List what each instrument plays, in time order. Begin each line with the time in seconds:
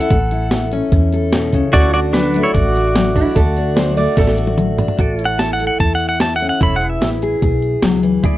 Already playing: pedal steel guitar E4 A4 C#5 F#5, steel-string acoustic guitar A4
0.00 steel-string acoustic guitar E4
0.10 upright bass A1, steel-string acoustic guitar A2 A4, kick, closed hi-hat
0.31 steel-string acoustic guitar E4, closed hi-hat
0.51 steel-string acoustic guitar E3, snare, closed hi-hat
0.72 steel-string acoustic guitar C#4, closed hi-hat
0.92 upright bass E2, steel-string acoustic guitar A2, kick, closed hi-hat
1.13 steel-string acoustic guitar A4, closed hi-hat
1.33 steel-string acoustic guitar B2, snare, closed hi-hat
1.53 steel-string acoustic guitar C#3, kick, closed hi-hat
1.73 upright bass D2, steel-string acoustic guitar D3 F#4, pedal steel guitar E4 F#4 A4 C#5 D5, kick, closed hi-hat
1.93 steel-string acoustic guitar D4, pedal steel guitar F#4 D5, closed hi-hat
1.99 pedal steel guitar F#4
2.13 steel-string acoustic guitar F#3, pedal steel guitar D4 B4, snare, closed hi-hat
2.34 steel-string acoustic guitar A3, closed hi-hat
2.43 pedal steel guitar E4 C#5
2.54 upright bass A1, steel-string acoustic guitar A2, pedal steel guitar F#4 D5, kick, closed hi-hat
2.75 steel-string acoustic guitar F#4, closed hi-hat
2.95 steel-string acoustic guitar F#3, snare, closed hi-hat
3.16 steel-string acoustic guitar D4, resonator guitar played with a steel bar E4, kick, closed hi-hat
3.35 upright bass D2, steel-string acoustic guitar D3 F#4, resonator guitar played with a steel bar A4, kick, closed hi-hat
3.57 steel-string acoustic guitar D4, closed hi-hat
3.76 steel-string acoustic guitar F#3, resonator guitar played with a steel bar C5, snare, closed hi-hat
3.97 steel-string acoustic guitar A3, resonator guitar played with a steel bar D5, closed hi-hat
4.17 upright bass A1, steel-string acoustic guitar A2, resonator guitar played with a steel bar A4, kick, snare, closed hi-hat
4.27 snare
4.37 steel-string acoustic guitar F#4, closed hi-hat
4.47 high tom
4.58 steel-string acoustic guitar F#3, closed hi-hat, mid tom
4.78 steel-string acoustic guitar D4, closed hi-hat, floor tom
4.88 floor tom
4.99 upright bass A1, steel-string acoustic guitar A2, pedal steel guitar F#4 A4 D5, kick, closed hi-hat
5.19 pedal steel guitar C#5, closed hi-hat
5.24 pedal steel guitar E4 F#5
5.38 steel-string acoustic guitar E3, pedal steel guitar A5, snare, closed hi-hat
5.53 pedal steel guitar F#5
5.60 steel-string acoustic guitar A4, closed hi-hat
5.67 pedal steel guitar F#5
5.80 upright bass E2, steel-string acoustic guitar A2 E4, pedal steel guitar A5, kick, closed hi-hat
5.95 pedal steel guitar F#5
6.00 closed hi-hat
6.09 pedal steel guitar F#5
6.20 steel-string acoustic guitar E3, pedal steel guitar A5, snare, closed hi-hat
6.36 pedal steel guitar F#5
6.40 steel-string acoustic guitar C#4, closed hi-hat
6.49 pedal steel guitar F#5
6.61 upright bass E1, steel-string acoustic guitar E3, pedal steel guitar E4 A4 C#5 B5, kick, closed hi-hat
6.76 pedal steel guitar F#5
6.81 pedal steel guitar G#4, closed hi-hat
6.88 pedal steel guitar B4 E5
7.01 upright bass A1, steel-string acoustic guitar B3, snare, closed hi-hat
7.22 steel-string acoustic guitar G#4, closed hi-hat
7.42 upright bass B1, steel-string acoustic guitar B2 G#4, kick, closed hi-hat
7.62 closed hi-hat
7.82 upright bass C#2, steel-string acoustic guitar F#3, snare, closed hi-hat
8.03 steel-string acoustic guitar E3, closed hi-hat
8.24 upright bass D2, steel-string acoustic guitar D3, pedal steel guitar E4 G#4 D5, kick, closed hi-hat